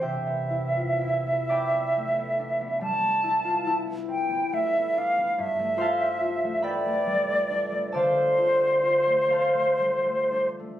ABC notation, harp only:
X:1
M:12/8
L:1/16
Q:3/8=46
K:C
V:1 name="Harp"
[Gcdeg]6 [dgbd']16- [dgbd']2- | [dgbd']2 [cfac']4 [Begb]6 [Adfa]6 [cfac']6 |]
V:2 name="Harp"
[C,CD] B, E F E B, C B, A, B, D B, G, B, E F E B, C B, A, B, D B, | G,, A, F G F A, B, A, G, A, D A, D, A, F G F A, B, A, G, A, D A, |]